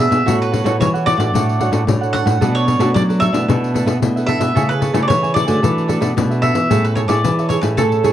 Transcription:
Already playing: B2 D4
0.00 G#4 B4 E5
0.11 B2 G#4 B4 E5, pandeiro
0.25 A2 A3 E4 F#4 A4 C#5 F#5, pandeiro
0.42 B4, pandeiro
0.52 E4 F#4 A4 C#5 F#5, pandeiro
0.64 A2 E4 F#4 A4 C#5 F#5, pandeiro
0.80 E3 C#5, pandeiro
0.94 A4 C#5 F#5, pandeiro
1.05 F#4 A4 C#5 D5 F#5, pandeiro
1.18 A2 D4 F#4 A4 C#5 F#5, pandeiro
1.34 A2 A3 D4 A4 C#5 F#5, pandeiro
1.49 pandeiro
1.59 D4 F#4 A4 C#5 F#5, pandeiro
1.71 A2 D4 A4 C#5 F#5, pandeiro
1.87 A2 A3 D4 F#4 C#5, pandeiro
2.01 A4 C#5 F#5, pandeiro
2.13 D4 A4 C#5 F#5, pandeiro
2.26 A2 A4 C#5 F#5, pandeiro
2.40 B2 A3 D4 F#4 A4 B4 D5, pandeiro
2.55 C#5, pandeiro
2.67 D4 A4 B4 D5, pandeiro
2.79 B2 A3 D4 F#4 A4 B4 D5, pandeiro
2.94 F#3 D5, pandeiro
3.08 A4 B4 D5, pandeiro
3.20 D4 A4 B4 D5 E5, pandeiro
3.32 B2 A3 D4 E4 A4 B4 D5, pandeiro
3.48 B2 D4 A4 B4 E5, pandeiro
3.64 pandeiro
3.74 A3 D4 E4 A4 B4 E5, pandeiro
3.86 B2 D4 A4 B4 E5, pandeiro
4.02 B2 A3 D4 E4, pandeiro
4.16 A4 B4 E5, pandeiro
4.27 D4 A4 B4 E5, pandeiro
4.40 B2 A4 B4 E5, pandeiro
4.55 C#3 A3 E4 G#4 A4 C#5 E5 G#5, pandeiro
4.69 B4, pandeiro
4.81 A4 C#5 E5 G#5, pandeiro
4.93 C#3 A3 E4 G#4 A4 C#5 E5 G#5, pandeiro
5.02 D5
5.08 C#3 E3 C#5, pandeiro
5.23 C#5 E5 G#5, pandeiro
5.34 A3 E4 G#4 A4 C#5 D5 E5 G#5, pandeiro
5.47 D3 A3 D4 F#4 C#5 E5 G#5, pandeiro
5.62 E3 D4 A4 B4 E5, pandeiro
5.78 pandeiro
5.88 A3 D4 F#4 A4 B4 E5, pandeiro
6.01 B2 D4 A4 B4 E5, pandeiro
6.16 B2 A3 D4 F#4, pandeiro
6.30 A4 B4 E5, pandeiro
6.42 D4 A4 B4 E5, pandeiro
6.54 E3 A4 B4 E5, pandeiro
6.70 A2 A3 C#4 E4 G#4 C#5 E5 A5, pandeiro
6.84 B4, pandeiro
6.95 G#4 C#5 E5 A5, pandeiro
7.08 A2 E4 G#4 C#5 D5 E5 A5, pandeiro
7.24 E3, pandeiro
7.39 C#5 E5 A5, pandeiro
7.49 G#4 C#5 E5 A5, pandeiro
7.61 A2 C#4 E4 G#4 B4 C#5 E5 A5, pandeiro
7.77 A3 G#4 A4 C#5 E5 A5, pandeiro
7.92 pandeiro
8.03 C#4 E4 G#4 C#5 E5 A5, pandeiro

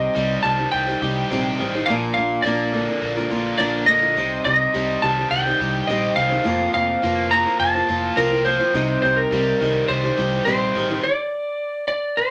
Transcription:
Already playing: C3 G3 D#4 G4 C5 D#5
0.15 C2 C3 G3 D#4 G4 C5
0.43 C2 D#3 G3 D#4 G4 C5 A5
0.58 D#4 G4 C5
0.72 C2 G3 G5
0.87 D#4 G4 C5
1.02 C2 G3 D#4 G4 C5
1.30 A#1 C3 G3 C4 D#4 G4 C5
1.59 A1 D#3 G3 D#4 G4 C5
1.75 D#4 G4 C5
1.86 A#1 A#2 F3 A#3 F5
1.90 D4 F4 A#4
2.14 A#1 A#3 F5
2.18 D4 F4 A#4
2.42 A#1 A#2 F3 A#3 D4 D5
2.46 A#3 F4 A#4
2.73 D3 A#3 D4 F4 A#4
2.88 A#3 D4 F4 A#4
3.02 A#1 A#3
3.16 A#3 D4 F4 A#4
3.30 A#1 A#3 D4 F4 A#4
3.58 A#1 A#2 F3 A#3 D4 F4 A#4 D5
3.86 D3 A#3 D4 F4 A#4 D#5
4.02 A#3 D4 F4 A#4
4.16 C2 C3 G3 D#4 G4 C5
4.45 C2 G3 D#4 G4 C5 D#5
4.74 C2 C3 G3 D#4 G4 C5
5.02 C2 D#3 G3 D#4 G4 C5 A5
5.18 D#4 G4 C5
5.30 C2 G3 G5
5.46 D#4 G4 C5
5.60 C2 G3 D#4 G4 C5
5.87 A#1 C3 G3 C4 D#4 G4 C5 D#5
6.16 C2 D#3 G3 D#4 G4 C5 F5
6.30 D#4 G4 C5
6.44 F1 F2 F3 A#3 F4 C5
6.73 F1 F3 A#3 F4 C5 F5
7.03 F1 F3 A#3 F4 C5
7.31 F3 A#3 F4 C5 A#5
7.46 A#3 F4 C5
7.59 F1 A#3 A5
7.75 A#3 F4 C5
7.88 F1 F3 A#3 F4 C5
8.17 C2 F3 A#3 C4 F4 A#4 C5
8.31 A#3 F4 C5
8.44 F3 A#3 F4 C5
8.59 A#3 F4 C5
8.74 C2 C3 G3 D#4 G4 C5
9.02 C2 G3 D#4 G4 C5
9.16 A#4
9.31 C2 C3 G3 D#4 G4 C5
9.60 C2 D#3 G3 D#4 G4 C5
9.88 C2 G3 C5
10.04 D#4 G4 C5
10.17 C2 G3 D#4 G4 C5
10.45 A#1 C3 G3 C4 D#4 G4 C5
10.75 A1 D#3 G3 D#4 G4 C5
10.90 D#4 G4 C5
11.03 D5
11.88 D5
12.17 C5

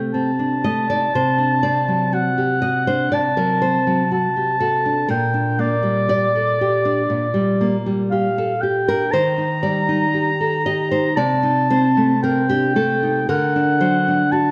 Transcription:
Already playing: C3 A3 C5
0.14 C4 A5
0.39 D4
0.64 A3 D#5
0.90 D#4 D5
1.15 C3 C5
1.38 D4
1.63 C4 D5
1.88 F#3
2.13 F#4 F#5
2.38 G4
2.62 F#4 D#5
2.87 D4 C5
3.12 C3 D5 A5
3.37 F#3 A#4
3.62 C4 C5
3.87 F#3
4.12 F#4 A5
4.36 G4
4.60 F#4 A4
4.86 D4
5.08 A#2 A#4 G5
5.34 D4
5.59 A#3 D5
5.83 G3
6.09 G4 D5
6.35 A4
6.61 G4
6.85 D4
7.10 A#2
7.34 G3
7.61 A#3
7.86 G3
8.11 G4 F5
8.38 A4
8.61 G4 G5
8.88 D4 A#4
9.11 D#3 C5 A#5
9.38 D#4
9.63 G3 D5
9.89 D#4
10.14 G4
10.41 A4
10.66 G4 D#5
10.91 D#4 C5
11.16 C3 D5 A5
11.43 D#4
11.70 C4 C5
11.97 A3
12.23 C4 A#4 G5
12.49 D4 G4
12.76 A3 A4
13.03 D#4
13.29 D3 A#4 F#5
13.56 D4
13.81 F#3 C5
14.08 D4
14.32 F#4 A5

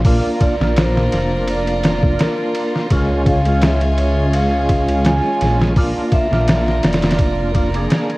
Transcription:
Already playing: A#1 F4
0.05 A#3 D4 F4 A#4 D5 A#5, kick, open hi-hat
0.40 D5, kick, ride
0.60 A#1 A#3 D4 F4, snare
0.76 C5, snare, ride
0.97 snare
1.12 F1, snare, ride
1.48 D5, ride
1.67 ride
1.84 snare, ride
2.03 kick
2.19 A#4, snare, ride
2.55 ride
2.76 snare
2.90 C#2 G#3 C#4 F4 G#4 C#5 G#5, kick, ride
3.26 F5, kick, ride
3.46 G#3 C#4 F4, ride
3.62 E5, snare, ride
3.81 ride
3.98 ride
4.33 F5, ride
4.69 kick, ride
4.88 ride
5.05 G#5, snare, ride
5.41 A#1, snare, ride
5.61 snare
5.76 A#3 D4 F4 A#4 D5 A#5, kick, open hi-hat
6.12 E5, kick, ride
6.31 A#1 A#3 D4 F4, snare
6.48 snare, ride
6.68 snare
6.83 F1 D5, snare, ride
6.93 snare, ride
7.02 snare, ride
7.11 snare, ride
7.19 kick, ride
7.54 A#3 D4 F4, kick, ride
7.74 A#3 D4 G#4, ride
7.90 snare, ride
8.10 ride

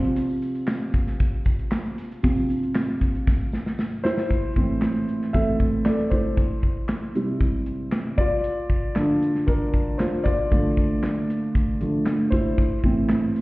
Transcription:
Already playing: C3 F3 C4
0.04 closed hi-hat
0.16 closed hi-hat, tambourine
0.29 tambourine
0.41 closed hi-hat, tambourine
0.55 closed hi-hat, tambourine
0.67 snare, clap, tambourine
0.81 closed hi-hat
0.94 kick, closed hi-hat
1.07 snare, closed hi-hat, tambourine
1.20 kick, closed hi-hat, tambourine
1.45 kick, closed hi-hat, tambourine
1.59 closed hi-hat
1.71 snare, clap, tambourine
1.86 closed hi-hat
1.98 closed hi-hat, tambourine
2.11 closed hi-hat, tambourine
2.23 C3 F3 C4, kick, closed hi-hat, tambourine
2.36 tambourine
2.49 closed hi-hat, tambourine
2.63 closed hi-hat
2.75 snare, clap, tambourine
3.01 kick, closed hi-hat
3.15 closed hi-hat
3.27 kick, snare, tambourine
3.52 snare, tambourine
3.66 snare
3.79 snare, tambourine
4.04 E4 C5, snare, tambourine
4.17 snare, tambourine
4.31 kick, closed hi-hat
4.56 A2 E3 C4, kick, closed hi-hat
4.82 snare, clap, closed hi-hat
5.09 closed hi-hat
5.22 snare
5.33 A2 E3 C4 A4 E5, kick, closed hi-hat
5.60 kick, closed hi-hat
5.85 A4 D5, snare, clap, closed hi-hat
6.10 E4 C5, kick, closed hi-hat
6.37 kick, closed hi-hat
6.63 kick, closed hi-hat
6.89 snare, clap, closed hi-hat
7.15 C3 G3 E4, closed hi-hat
7.40 kick, closed hi-hat
7.66 closed hi-hat
7.92 snare, clap, closed hi-hat
8.18 F4 D5, kick, closed hi-hat
8.44 closed hi-hat
8.70 kick, closed hi-hat
8.95 D3 F3 D4, snare, clap, closed hi-hat
9.22 closed hi-hat
9.35 snare
9.47 D4 A#4, kick, closed hi-hat
9.74 kick, closed hi-hat
9.98 F4 C5, snare, clap, closed hi-hat
10.24 F4 D5, kick, closed hi-hat
10.52 D3 F3 A3, kick, closed hi-hat
10.77 kick, closed hi-hat
11.03 snare, clap, closed hi-hat
11.30 closed hi-hat
11.55 kick, closed hi-hat
11.81 D3 F3 A3, closed hi-hat
12.06 snare, clap, closed hi-hat
12.30 E4 C5, kick, closed hi-hat
12.58 kick, closed hi-hat
12.84 A2 E3 C4, kick, closed hi-hat
13.09 snare, clap, closed hi-hat
13.36 closed hi-hat

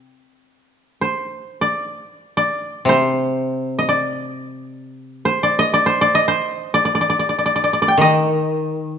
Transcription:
Already playing: C4
1.01 C5
1.61 D5
2.37 D5
2.85 C3 C5
3.79 D#5
3.89 D5
5.25 C5
5.43 D5
5.59 D#5
5.74 D5
5.86 C5
6.01 D5
6.15 D#5
6.28 C5
6.74 D5
6.85 D5
6.95 D5
7.01 D5
7.10 D5
7.19 D5
7.29 D5
7.38 D5
7.46 D5
7.56 D5
7.64 D5
7.73 D5
7.82 D5
7.88 G5
7.98 D#3 D#5

